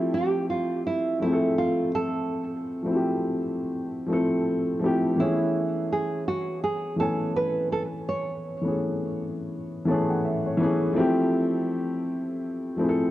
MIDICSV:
0, 0, Header, 1, 3, 480
1, 0, Start_track
1, 0, Key_signature, 3, "major"
1, 0, Tempo, 722892
1, 1521, Time_signature, 4, 2, 24, 8
1, 8703, End_track
2, 0, Start_track
2, 0, Title_t, "Nylon-string guitar"
2, 0, Program_c, 0, 24
2, 0, Note_on_c, 0, 64, 83
2, 93, Note_on_c, 0, 67, 79
2, 101, Note_off_c, 0, 64, 0
2, 328, Note_off_c, 0, 67, 0
2, 331, Note_on_c, 0, 65, 83
2, 573, Note_off_c, 0, 65, 0
2, 575, Note_on_c, 0, 64, 90
2, 805, Note_off_c, 0, 64, 0
2, 812, Note_on_c, 0, 64, 85
2, 1030, Note_off_c, 0, 64, 0
2, 1051, Note_on_c, 0, 65, 92
2, 1292, Note_off_c, 0, 65, 0
2, 1294, Note_on_c, 0, 69, 92
2, 2941, Note_off_c, 0, 69, 0
2, 3452, Note_on_c, 0, 64, 81
2, 3900, Note_off_c, 0, 64, 0
2, 3934, Note_on_c, 0, 68, 78
2, 4167, Note_off_c, 0, 68, 0
2, 4169, Note_on_c, 0, 66, 85
2, 4404, Note_off_c, 0, 66, 0
2, 4406, Note_on_c, 0, 68, 91
2, 4644, Note_off_c, 0, 68, 0
2, 4647, Note_on_c, 0, 69, 86
2, 4887, Note_off_c, 0, 69, 0
2, 4890, Note_on_c, 0, 71, 94
2, 5125, Note_off_c, 0, 71, 0
2, 5128, Note_on_c, 0, 69, 97
2, 5192, Note_off_c, 0, 69, 0
2, 5370, Note_on_c, 0, 73, 99
2, 6779, Note_off_c, 0, 73, 0
2, 8703, End_track
3, 0, Start_track
3, 0, Title_t, "Upright piano"
3, 0, Program_c, 1, 0
3, 0, Control_c, 1, 64, 127
3, 0, Note_on_c, 1, 53, 114
3, 0, Note_on_c, 1, 57, 91
3, 0, Note_on_c, 1, 60, 97
3, 0, Note_on_c, 1, 64, 91
3, 0, Note_on_c, 1, 67, 104
3, 257, Note_off_c, 1, 53, 0
3, 263, Note_off_c, 1, 57, 0
3, 268, Note_off_c, 1, 60, 0
3, 272, Note_off_c, 1, 64, 0
3, 278, Note_off_c, 1, 67, 0
3, 796, Note_on_c, 1, 53, 81
3, 806, Note_on_c, 1, 57, 86
3, 816, Note_on_c, 1, 60, 83
3, 827, Note_on_c, 1, 76, 73
3, 837, Note_on_c, 1, 68, 69
3, 870, Note_off_c, 1, 68, 0
3, 881, Note_on_c, 1, 69, 97
3, 1465, Note_off_c, 1, 53, 0
3, 1470, Note_off_c, 1, 57, 0
3, 1475, Note_off_c, 1, 60, 0
3, 1480, Note_off_c, 1, 76, 0
3, 1507, Note_off_c, 1, 69, 0
3, 1877, Note_on_c, 1, 53, 77
3, 1889, Note_on_c, 1, 57, 71
3, 1899, Note_on_c, 1, 60, 80
3, 1910, Note_on_c, 1, 64, 72
3, 1920, Note_on_c, 1, 66, 64
3, 1946, Note_off_c, 1, 66, 0
3, 1963, Note_on_c, 1, 67, 83
3, 2446, Note_off_c, 1, 53, 0
3, 2452, Note_off_c, 1, 57, 0
3, 2457, Note_off_c, 1, 60, 0
3, 2462, Note_off_c, 1, 64, 0
3, 2489, Note_off_c, 1, 67, 0
3, 2699, Note_on_c, 1, 53, 87
3, 2711, Note_on_c, 1, 57, 82
3, 2721, Note_on_c, 1, 60, 80
3, 2730, Note_on_c, 1, 64, 71
3, 2742, Note_on_c, 1, 69, 100
3, 3053, Note_off_c, 1, 53, 0
3, 3059, Note_off_c, 1, 57, 0
3, 3064, Note_off_c, 1, 60, 0
3, 3069, Note_off_c, 1, 64, 0
3, 3074, Note_off_c, 1, 69, 0
3, 3184, Note_on_c, 1, 53, 91
3, 3195, Note_on_c, 1, 57, 82
3, 3204, Note_on_c, 1, 60, 80
3, 3215, Note_on_c, 1, 64, 88
3, 3225, Note_on_c, 1, 67, 99
3, 3370, Note_off_c, 1, 53, 0
3, 3375, Note_off_c, 1, 57, 0
3, 3380, Note_off_c, 1, 60, 0
3, 3385, Note_off_c, 1, 64, 0
3, 3390, Note_off_c, 1, 67, 0
3, 3427, Note_on_c, 1, 52, 87
3, 3438, Note_on_c, 1, 57, 80
3, 3448, Note_on_c, 1, 59, 75
3, 3449, Control_c, 1, 64, 0
3, 3458, Note_on_c, 1, 61, 83
3, 3465, Note_on_c, 1, 68, 92
3, 3586, Control_c, 1, 64, 127
3, 4100, Note_off_c, 1, 52, 0
3, 4105, Note_off_c, 1, 57, 0
3, 4110, Note_off_c, 1, 59, 0
3, 4116, Note_off_c, 1, 61, 0
3, 4119, Note_off_c, 1, 68, 0
3, 4622, Note_on_c, 1, 52, 66
3, 4633, Note_on_c, 1, 57, 66
3, 4644, Note_on_c, 1, 59, 69
3, 4655, Note_on_c, 1, 61, 66
3, 4663, Note_on_c, 1, 80, 81
3, 5298, Note_off_c, 1, 52, 0
3, 5303, Note_off_c, 1, 57, 0
3, 5309, Note_off_c, 1, 59, 0
3, 5314, Note_off_c, 1, 61, 0
3, 5318, Note_off_c, 1, 80, 0
3, 5720, Note_on_c, 1, 52, 66
3, 5729, Note_on_c, 1, 57, 61
3, 5740, Note_on_c, 1, 59, 66
3, 5751, Note_on_c, 1, 61, 60
3, 5761, Note_on_c, 1, 68, 73
3, 6287, Note_off_c, 1, 52, 0
3, 6292, Note_off_c, 1, 57, 0
3, 6297, Note_off_c, 1, 59, 0
3, 6302, Note_off_c, 1, 61, 0
3, 6308, Note_off_c, 1, 68, 0
3, 6541, Note_on_c, 1, 52, 90
3, 6552, Note_on_c, 1, 57, 84
3, 6560, Note_on_c, 1, 59, 84
3, 6561, Note_on_c, 1, 81, 72
3, 6572, Note_on_c, 1, 61, 82
3, 6582, Note_on_c, 1, 68, 91
3, 6693, Note_off_c, 1, 81, 0
3, 6707, Note_on_c, 1, 78, 67
3, 6796, Note_off_c, 1, 78, 0
3, 6804, Note_on_c, 1, 76, 69
3, 6894, Note_off_c, 1, 52, 0
3, 6899, Note_off_c, 1, 57, 0
3, 6903, Note_off_c, 1, 59, 0
3, 6909, Note_off_c, 1, 61, 0
3, 6914, Note_off_c, 1, 68, 0
3, 6934, Note_off_c, 1, 76, 0
3, 6948, Note_on_c, 1, 73, 72
3, 7020, Note_on_c, 1, 52, 107
3, 7031, Note_on_c, 1, 57, 82
3, 7042, Note_on_c, 1, 59, 89
3, 7052, Note_on_c, 1, 61, 86
3, 7062, Note_on_c, 1, 68, 102
3, 7208, Note_off_c, 1, 52, 0
3, 7213, Note_off_c, 1, 57, 0
3, 7219, Note_off_c, 1, 59, 0
3, 7224, Note_off_c, 1, 61, 0
3, 7229, Note_off_c, 1, 68, 0
3, 7258, Note_on_c, 1, 53, 102
3, 7260, Note_off_c, 1, 73, 0
3, 7268, Note_on_c, 1, 57, 89
3, 7279, Note_on_c, 1, 60, 106
3, 7288, Control_c, 1, 64, 0
3, 7290, Note_on_c, 1, 64, 97
3, 7301, Note_on_c, 1, 67, 108
3, 7396, Control_c, 1, 64, 127
3, 7935, Note_off_c, 1, 53, 0
3, 7941, Note_off_c, 1, 57, 0
3, 7946, Note_off_c, 1, 60, 0
3, 7952, Note_off_c, 1, 64, 0
3, 7957, Note_off_c, 1, 67, 0
3, 8476, Note_on_c, 1, 53, 80
3, 8484, Note_on_c, 1, 57, 81
3, 8495, Note_on_c, 1, 60, 86
3, 8507, Note_on_c, 1, 64, 81
3, 8518, Note_on_c, 1, 68, 75
3, 8550, Note_off_c, 1, 68, 0
3, 8559, Note_on_c, 1, 69, 101
3, 8703, Note_off_c, 1, 53, 0
3, 8703, Note_off_c, 1, 57, 0
3, 8703, Note_off_c, 1, 60, 0
3, 8703, Note_off_c, 1, 64, 0
3, 8703, Note_off_c, 1, 69, 0
3, 8703, End_track
0, 0, End_of_file